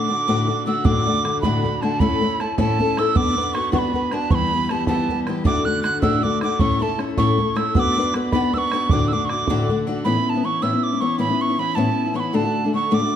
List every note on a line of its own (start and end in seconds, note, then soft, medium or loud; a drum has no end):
0.00 0.10 F#4 medium
0.00 0.66 D6 medium
0.09 0.27 D3 soft
0.09 0.28 A3 medium
0.09 0.28 D4 soft
0.09 0.29 F#4 medium
0.27 0.49 D2 medium
0.27 0.49 A2 medium
0.27 0.46 D3 medium
0.27 0.47 A3 medium
0.27 0.47 D4 loud
0.27 0.48 F#4 loud
0.47 0.65 D3 medium
0.47 0.66 A3 medium
0.47 0.66 D4 medium
0.47 0.67 F#4 medium
0.66 0.83 D3 medium
0.66 0.84 A3 medium
0.66 0.84 D4 medium
0.66 0.84 F#4 medium
0.66 0.87 E6 medium
0.84 1.06 D2 medium
0.84 1.06 A2 medium
0.84 1.05 D3 medium
0.84 1.06 A3 medium
0.84 1.05 D4 medium
0.84 1.06 F#4 medium
0.84 1.41 D6 loud
0.84 bodhran medium
0.96 bodhran soft
1.06 1.23 D3 medium
1.06 1.25 A3 medium
1.06 1.24 D4 medium
1.06 1.25 F#4 medium
1.24 1.43 D3 medium
1.24 1.44 A3 medium
1.24 1.43 D4 soft
1.24 1.44 F#4 medium
1.24 bodhran medium
1.41 1.64 D2 medium
1.41 1.65 A2 medium
1.41 1.62 D3 medium
1.41 1.63 A3 medium
1.41 1.63 D4 medium
1.41 1.83 B5 medium
1.41 bodhran medium
1.45 1.64 F#4 medium
1.63 1.81 D3 soft
1.63 1.82 A3 soft
1.63 1.82 D4 soft
1.63 1.83 F#4 medium
1.63 bodhran soft
1.81 2.00 D3 medium
1.81 2.00 A3 medium
1.81 2.01 D4 medium
1.81 2.01 F#4 medium
1.81 2.01 A5 medium
1.81 bodhran soft
2.00 2.21 A2 medium
2.00 2.20 A3 medium
2.00 2.21 C#4 medium
2.00 2.21 E4 medium
2.00 2.22 A4 medium
2.00 2.42 B5 loud
2.00 bodhran medium
2.11 bodhran soft
2.21 2.39 A3 medium
2.21 2.39 C#4 medium
2.21 2.40 E4 medium
2.21 2.41 A4 medium
2.40 2.57 A3 medium
2.40 2.57 C#4 medium
2.40 2.58 E4 medium
2.40 2.59 A4 medium
2.40 2.59 A5 medium
2.40 bodhran medium
2.58 2.79 A2 medium
2.58 2.78 A3 medium
2.58 2.79 C#4 loud
2.58 2.80 E4 medium
2.58 2.80 A4 medium
2.58 3.00 A5 medium
2.58 bodhran medium
2.79 2.96 A3 medium
2.79 2.98 C#4 medium
2.79 2.98 E4 medium
2.79 2.98 A4 medium
2.79 bodhran soft
2.97 3.15 A3 medium
2.97 3.15 C#4 medium
2.97 3.16 E4 medium
2.97 3.17 A4 medium
2.97 3.18 E6 medium
2.97 bodhran medium
3.15 3.35 B3 medium
3.15 3.36 D4 medium
3.15 3.36 F#4 medium
3.15 3.37 B4 medium
3.15 3.55 D6 loud
3.15 bodhran medium
3.26 bodhran soft
3.36 3.54 B3 medium
3.36 3.55 D4 medium
3.36 3.55 F#4 medium
3.36 3.55 B4 medium
3.54 3.71 B3 medium
3.54 3.72 D4 medium
3.54 3.72 F#4 medium
3.54 3.73 B4 medium
3.54 3.72 C#6 medium
3.54 bodhran medium
3.72 3.92 B3 medium
3.72 3.93 D4 medium
3.72 3.94 F#4 medium
3.72 3.94 B4 medium
3.72 3.80 C#6 medium
3.72 bodhran medium
3.79 4.15 B5 medium
3.93 4.11 B3 medium
3.93 4.11 D4 soft
3.93 4.12 F#4 medium
3.93 4.13 B4 medium
3.93 bodhran soft
4.11 4.30 B3 medium
4.11 4.30 D4 medium
4.11 4.31 F#4 medium
4.11 4.31 B4 medium
4.11 4.32 A5 medium
4.11 bodhran medium
4.30 4.51 E3 medium
4.30 4.52 G3 medium
4.30 4.52 B3 medium
4.30 4.52 G4 medium
4.30 4.36 C#6 loud
4.30 bodhran medium
4.35 4.73 B5 loud
4.41 bodhran soft
4.52 4.68 E3 medium
4.52 4.70 G3 medium
4.52 4.70 B3 medium
4.52 4.71 G4 medium
4.69 4.87 E3 medium
4.69 4.87 G3 soft
4.69 4.88 B3 medium
4.69 4.88 G4 medium
4.69 4.87 A5 medium
4.69 bodhran medium
4.87 5.08 E3 medium
4.87 5.09 G3 medium
4.87 5.09 B3 medium
4.87 5.09 G4 medium
4.87 5.20 A5 medium
4.87 bodhran medium
5.09 5.26 E3 soft
5.09 5.27 G3 medium
5.09 5.28 B3 medium
5.09 5.28 G4 medium
5.09 bodhran soft
5.27 5.45 E3 medium
5.27 5.45 G3 medium
5.27 5.45 B3 medium
5.27 5.45 G4 medium
5.27 bodhran medium
5.44 5.66 D2 medium
5.44 5.66 A2 medium
5.44 5.63 D3 medium
5.44 5.65 A3 medium
5.44 5.65 D4 medium
5.44 5.66 F#4 medium
5.44 5.67 D6 medium
5.44 bodhran medium
5.55 bodhran soft
5.64 5.81 D3 medium
5.64 5.83 A3 medium
5.64 5.82 D4 medium
5.64 5.83 F#4 medium
5.64 5.83 F#6 loud
5.83 6.01 D3 medium
5.83 6.02 A3 medium
5.83 6.02 D4 medium
5.83 6.02 F#4 medium
5.83 6.01 F#6 medium
5.83 bodhran medium
6.02 6.23 D2 medium
6.02 6.24 A2 medium
6.02 6.21 D3 medium
6.02 6.23 A3 medium
6.02 6.22 D4 medium
6.02 6.23 F#4 loud
6.02 6.25 E6 medium
6.02 bodhran medium
6.22 6.40 D3 soft
6.22 6.42 A3 medium
6.22 6.42 D4 medium
6.22 6.42 F#4 medium
6.22 6.42 D6 loud
6.22 bodhran soft
6.41 6.60 D3 medium
6.41 6.59 A3 medium
6.41 6.60 D4 medium
6.41 6.61 F#4 medium
6.41 6.61 D6 medium
6.41 bodhran medium
6.59 6.81 A2 medium
6.59 6.78 A3 medium
6.59 6.79 C#4 medium
6.59 6.80 E4 medium
6.59 6.81 A4 medium
6.59 6.84 C#6 loud
6.59 bodhran medium
6.70 bodhran soft
6.80 6.97 A3 medium
6.80 6.98 C#4 medium
6.80 6.99 E4 medium
6.80 6.99 A4 medium
6.80 7.00 A5 loud
6.99 7.17 A3 soft
6.99 7.17 C#4 soft
6.99 7.18 E4 medium
6.99 7.18 A4 medium
6.99 bodhran medium
7.17 7.39 A2 medium
7.17 7.37 A3 medium
7.17 7.38 C#4 medium
7.17 7.39 E4 medium
7.17 7.39 A4 medium
7.17 7.58 C#6 medium
7.17 bodhran medium
7.38 7.54 A3 medium
7.38 7.55 C#4 medium
7.38 7.56 E4 soft
7.38 7.57 A4 medium
7.38 bodhran soft
7.55 7.74 A3 medium
7.55 7.75 C#4 medium
7.55 7.75 E4 medium
7.55 7.76 A4 medium
7.55 7.75 E6 medium
7.55 bodhran medium
7.75 7.95 B3 medium
7.75 7.96 D4 medium
7.75 7.97 F#4 medium
7.75 7.97 B4 medium
7.75 7.80 E6 loud
7.75 bodhran medium
7.79 8.14 D6 loud
7.86 bodhran soft
7.97 8.13 B3 medium
7.97 8.14 D4 medium
7.97 8.15 F#4 medium
7.97 8.15 B4 medium
8.14 8.32 B3 soft
8.14 8.33 D4 medium
8.14 8.33 F#4 medium
8.14 8.34 B4 medium
8.14 bodhran medium
8.32 8.53 B3 medium
8.32 8.54 D4 medium
8.32 8.55 F#4 loud
8.32 8.55 B4 loud
8.32 8.55 B5 medium
8.32 bodhran medium
8.53 8.71 B3 medium
8.53 8.72 D4 medium
8.53 8.73 F#4 medium
8.53 8.73 B4 medium
8.53 8.59 E6 medium
8.53 bodhran soft
8.58 8.93 C#6 loud
8.72 8.90 B3 medium
8.72 8.91 D4 medium
8.72 8.91 F#4 medium
8.72 8.91 B4 medium
8.72 bodhran medium
8.89 9.12 D2 medium
8.89 9.12 A2 medium
8.89 9.11 D3 medium
8.89 9.12 A3 medium
8.89 9.12 D4 medium
8.89 9.12 F#4 medium
8.89 9.09 D6 loud
8.89 bodhran medium
9.01 bodhran soft
9.08 9.14 E6 medium
9.12 9.29 D3 soft
9.12 9.31 A3 medium
9.12 9.30 D4 medium
9.12 9.31 F#4 medium
9.12 9.26 D6 loud
9.25 9.31 C#6 medium
9.29 9.48 D3 soft
9.29 9.49 A3 medium
9.29 9.49 D4 soft
9.29 9.49 F#4 medium
9.29 9.79 D6 loud
9.29 bodhran medium
9.47 9.69 D2 medium
9.47 9.70 A2 medium
9.47 9.68 D3 loud
9.47 9.69 A3 loud
9.47 9.68 D4 loud
9.47 9.70 F#4 loud
9.47 bodhran medium
9.68 9.85 D3 medium
9.68 9.87 A3 medium
9.68 9.86 D4 medium
9.68 9.88 F#4 medium
9.68 bodhran soft
9.87 10.05 D3 medium
9.87 10.05 A3 medium
9.87 10.05 D4 medium
9.87 10.06 F#4 medium
10.05 10.15 A2 medium
10.05 10.16 E3 medium
10.05 10.16 B3 medium
10.05 10.16 C#4 medium
10.05 10.14 E4 medium
10.05 10.26 B5 medium
10.15 10.36 B3 soft
10.15 10.34 C#4 soft
10.15 10.33 E4 soft
10.26 10.46 A5 medium
10.26 10.31 B5 medium
10.34 10.43 B3 soft
10.34 10.44 C#4 soft
10.34 10.44 E4 medium
10.43 10.61 E3 soft
10.43 10.62 B3 soft
10.43 10.62 C#4 soft
10.43 10.62 E4 medium
10.43 10.64 C#6 medium
10.62 10.73 A2 medium
10.62 10.73 E3 medium
10.62 10.73 B3 medium
10.62 10.73 C#4 medium
10.62 10.71 E4 medium
10.62 10.85 E6 medium
10.72 10.93 B3 soft
10.72 10.91 C#4 soft
10.72 10.90 E4 medium
10.83 11.02 D6 medium
10.92 11.00 B3 soft
10.92 11.01 C#4 soft
10.92 11.01 E4 soft
11.00 11.17 E3 medium
11.00 11.18 B3 medium
11.00 11.19 C#4 medium
11.00 11.18 E4 medium
11.00 11.19 C#6 medium
11.18 11.29 A2 medium
11.18 11.30 E3 medium
11.18 11.30 B3 medium
11.18 11.29 C#4 medium
11.18 11.27 E4 medium
11.18 11.43 B5 loud
11.28 11.50 B3 soft
11.28 11.49 C#4 soft
11.28 11.47 E4 soft
11.41 11.61 C#6 loud
11.49 11.58 B3 soft
11.49 11.58 C#4 soft
11.49 11.59 E4 medium
11.58 11.76 E3 medium
11.58 11.76 B3 soft
11.58 11.77 C#4 soft
11.58 11.77 E4 medium
11.58 11.77 B5 medium
11.75 11.87 A2 medium
11.75 11.88 E3 medium
11.75 11.87 B3 medium
11.75 11.87 C#4 medium
11.75 11.85 E4 medium
11.75 12.17 A5 medium
11.86 12.07 B3 soft
11.86 12.06 C#4 soft
11.86 12.04 E4 soft
12.06 12.14 B3 soft
12.06 12.14 C#4 soft
12.06 12.15 E4 soft
12.14 12.33 E3 medium
12.14 12.33 B3 medium
12.14 12.34 C#4 medium
12.14 12.34 E4 medium
12.14 12.21 C#6 medium
12.20 12.37 B5 medium
12.33 12.44 D2 medium
12.33 12.45 A2 medium
12.33 12.45 D3 medium
12.33 12.44 A3 medium
12.33 12.44 D4 medium
12.33 12.43 F#4 medium
12.33 12.74 A5 loud
12.44 12.65 D3 soft
12.44 12.65 A3 soft
12.44 12.63 D4 soft
12.44 12.63 F#4 soft
12.64 12.72 D3 soft
12.64 12.73 A3 soft
12.64 12.74 D4 soft
12.64 12.74 F#4 soft
12.73 12.90 D3 soft
12.73 12.91 A3 medium
12.73 12.91 D4 medium
12.73 12.91 F#4 medium
12.73 12.96 C#6 medium
12.91 13.02 D2 medium
12.91 13.02 A2 medium
12.91 13.02 D3 medium
12.91 13.01 A3 loud
12.91 13.00 D4 medium
12.91 13.00 F#4 medium
12.91 13.16 D6 medium
13.01 13.16 D3 soft
13.01 13.16 A3 soft
13.01 13.16 D4 medium
13.01 13.16 F#4 soft